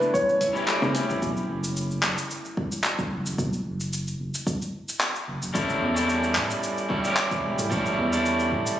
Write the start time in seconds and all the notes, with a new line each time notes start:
Already playing: A3 B3 D4 E4 F#4 A4 B4
0.01 A3, cabasa
0.14 A3 C#5, kick, cabasa
0.28 C#4, cabasa
0.41 E4, kick, closed hi-hat, cabasa
0.53 G3 C#4 E4 G4, cabasa
0.57 G4
0.68 A4, clap, cabasa
0.82 A3, low conga, cabasa
0.95 A3, closed hi-hat, cabasa
1.09 A1 C#4, cabasa
1.22 B1, kick, cabasa
1.37 cabasa
1.49 F#1
1.64 cabasa
1.77 cabasa
1.91 cabasa
2.03 F#1, clap
2.18 cabasa
2.31 cabasa
2.45 cabasa
2.57 kick
2.72 cabasa
2.84 clap, cabasa
2.99 kick, cabasa
3.12 F#1
3.26 F#1, cabasa
3.38 B1, kick, cabasa
3.53 cabasa
3.66 F#1
3.80 cabasa
3.93 cabasa
4.07 cabasa
4.20 F#1
4.34 cabasa
4.47 kick, cabasa
4.62 cabasa
4.89 cabasa
5.00 clap, cabasa
5.16 cabasa
5.28 F#1
5.42 F#1, cabasa
5.54 A1 G3 C#4 E4 A4, kick, cabasa
5.70 cabasa
5.82 E2
5.94 G3 C#4 E4 A4, cabasa
6.09 cabasa
6.24 cabasa
6.35 A2, clap
6.51 cabasa
6.63 cabasa
6.78 cabasa
6.89 G3 C#4 E4 A4, kick
7.02 G3 C#4 E4 G4, cabasa
7.17 clap, cabasa
7.31 kick, cabasa
7.44 E1
7.58 A2, cabasa
7.70 A1 G3 C#4 E4 A4, kick, cabasa
7.86 cabasa
7.98 E2
8.10 G3 C#4 E4 A4, cabasa
8.26 cabasa
8.40 cabasa
8.52 A2, kick
8.67 cabasa